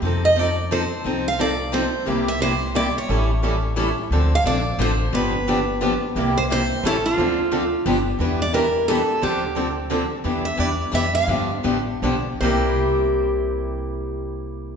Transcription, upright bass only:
X:1
M:3/4
L:1/8
Q:"Swing" 1/4=176
K:Cmix
V:1 name="Upright bass" clef=bass
F,,6 | C,,6 | C,,6 | A,,,6 |
D,,2 B,,,2 A,,,2 | G,,,6 | C,,4 A,,,2 | D,,4 G,,,2 |
E,,6 | D,,6 | E,,2 E,,2 F,,2 | G,,2 A,,,2 =B,,,2 |
C,,6- | C,,6 |]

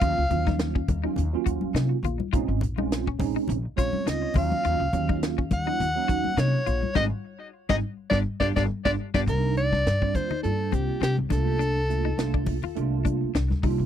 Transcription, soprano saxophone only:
X:1
M:4/4
L:1/16
Q:"Swing 16ths" 1/4=104
K:Ebdor
V:1 name="Soprano saxophone"
f4 z12 | z8 z2 d2 e2 f2- | f4 z2 g6 d4 | e z4 e z2 =d z d d z d z d |
[K:Cdor] B2 d4 c2 A2 G2 G2 A2- | A6 z8 z2 |]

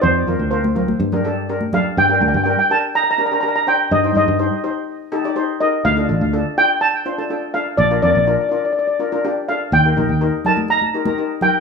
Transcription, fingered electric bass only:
X:1
M:4/4
L:1/16
Q:1/4=124
K:Gm
V:1 name="Fingered electric bass" clef=bass
F,,2 F,, D,,4- D,, G,,8 | G,,2 D,, G,,2 z8 z3 | G,,2 G,, G,,2 z8 z3 | D,,2 A,,, D,,2 z8 z3 |
B,,,2 F,, B,,,2 z8 z3 | E,,2 B,,, E,,2 z8 z3 |]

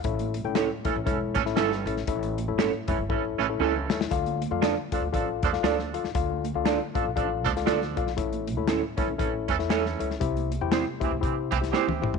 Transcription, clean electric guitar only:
X:1
M:4/4
L:1/8
Q:"Swing" 1/4=118
K:Dm
V:1 name="Clean electric guitar"
z2 [^CEA^c] z3 [CEAc] z | z2 [^CEA^c] z3 [CEAc] z | z2 [DFAd] z3 [DFAd] z | z2 [DFAd] z3 [DFAd] z |
z2 [^CEA^c] z3 [CEAc] z | z2 [CEGc] z3 [CEGc] z |]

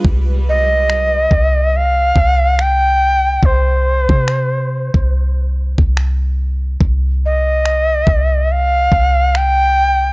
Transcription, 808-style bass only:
X:1
M:4/4
L:1/16
Q:"Swing 16ths" 1/4=71
K:Cm
V:1 name="808-style bass" clef=bass
C,,6 C,,4 C,,6 | C,,3 C,4 C,,4 C,,4- C,, | C,,6 C,,4 C,,6 |]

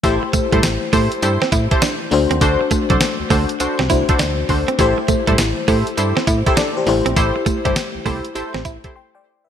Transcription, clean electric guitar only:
X:1
M:4/4
L:1/16
Q:"Swing 16ths" 1/4=101
K:Ador
V:1 name="Clean electric guitar"
z2 A, G, z2 A, z2 C E z D z2 C | z2 A, F, z2 A, z2 C E z D z2 C | z2 A, G, z2 A, z2 C E z D z2 C | z2 A, G, z2 A, z2 C E z4 z |]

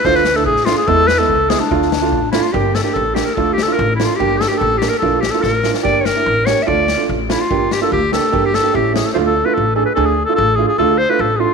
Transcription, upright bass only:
X:1
M:2/4
L:1/8
Q:1/4=145
K:none
V:1 name="Upright bass" clef=bass
D,,2 A,,,2 | E,,2 ^C,,2 | D,,2 A,,,2 | G,,,2 A,,,2 |
D,,2 A,,,2 | G,,,2 A,,,2 | _B,,,2 A,,,2 | G,,,2 A,,,2 |
D,,2 A,,,2 | G,,,2 D,,2 | G,,,2 A,,,2 | D,,2 A,,,2 |
D,,2 A,,,2 | D,,2 A,,,2 |]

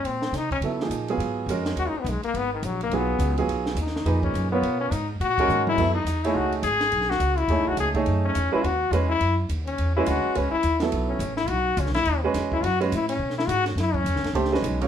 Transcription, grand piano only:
X:1
M:4/4
L:1/8
Q:"Swing" 1/4=210
K:Abdor
V:1 name="Grand piano"
z4 [G,C=E=A] [F,B,_E_A]2 [G,CFA]- | [G,CFA]2 [A,DGB]3 z3 | z4 [G,CFA]3 [G,CFA]- | [G,CFA]2 z2 [B,,EAc]3 [CFBd]- |
[CFBd]2 z3 [A,DGB]3 | [K:F#dor] [F,B,EA] z2 [A,DGc]3 z2 | z4 [A,DGc]3 [A,DGc]- | [A,DGc]2 z [G,CFB] z2 [G,CFB] z |
z4 z [G,CFB]3 | [G,CFB] z2 [F,B,EA]3 z2 | z4 z [G,CFB]3 | z [G,CFB] z6 |
z4 [A,=D=G^B] [^G,CF=B]2 [^B,,^E^Ac] |]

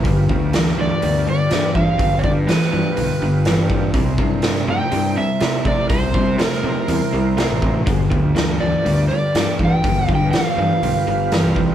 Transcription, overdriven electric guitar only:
X:1
M:4/4
L:1/8
Q:1/4=122
K:Gmix
V:1 name="Overdriven electric guitar" clef=bass
[G,,D,] [G,,D,] [G,,E,] [G,,E,] [G,,D,] [G,,D,] [G,,E,] [G,,E,] | [G,,D,] [G,,D,] [G,,E,] [G,,E,] [G,,D,] [G,,D,] [G,,E,] [G,,E,] | [C,G,] [C,G,] [C,A,] [C,A,] [C,G,] [C,G,] [C,A,] [C,A,] | [C,G,] [C,G,] [C,A,] [C,A,] [C,G,] [C,G,] [C,A,] [C,A,] |
[G,,D,] [G,,D,] [G,,E,] [G,,E,] [G,,D,] [G,,D,] [G,,E,] [G,,E,] | [G,,D,] [G,,D,] [G,,E,] [G,,E,] [G,,D,] [G,,D,] [G,,E,] [G,,E,] |]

